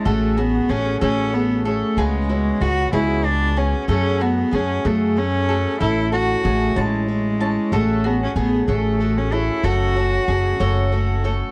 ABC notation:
X:1
M:6/8
L:1/16
Q:3/8=63
K:F#m
V:1 name="Mandolin"
A2 F2 G2 A4 A2 | G2 E2 F2 G4 G2 | A2 F2 G2 A4 A2 | A2 F2 G2 a4 a2 |
A2 F2 G2 A4 A2 | A2 F2 G2 A4 A2 |]
V:2 name="Cello"
A,2 B,2 C2 C2 B,2 A,2 | G,4 F2 E2 D2 C2 | C2 B,2 C2 A,2 C4 | E2 F4 G,6 |
A,2 B, C B,2 A,3 C E2 | F8- F2 z2 |]
V:3 name="Twelve-string acoustic guitar"
[A,CFG]2 [CFG]2 [A,CFG]2 [A,CFG]2 [A,CFG]2 [CFG]2 | [C,G,B,CF]2 [B,CF]2 [G,B,CF]2 [C,G,B,CF]2 [G,B,F]2 [B,CF]2 | [F,,C,F,A,FG]2 [F,A,FG]2 [F,A,FG]2 [F,,C,F,A,FG]2 [F,A,FG]2 [F,A,FG]2 | [A,,E,A,CEA]2 [A,CEA]2 [A,CEA]2 [A,,E,CE]2 [CE]2 [CE]2 |
[A,CFG]2 [CFG]2 [A,CFG]2 [A,CFG]2 [A,CFG]2 [CFG]2 | [F,,C,F,A,CF]2 [F,A,CF]2 [F,A,CF]2 [F,,C,F,A,CF]2 [F,A,CF]2 [F,A,CF]2 |]
V:4 name="Upright bass" clef=bass
A,,,4 A,,,2 A,,,6 | C,,4 C,,2 C,,6 | F,,4 F,,2 F,,6 | A,,,4 A,,,2 A,,,6 |
A,,,4 A,,,2 A,,,6 | F,,,4 F,,,2 F,,,6 |]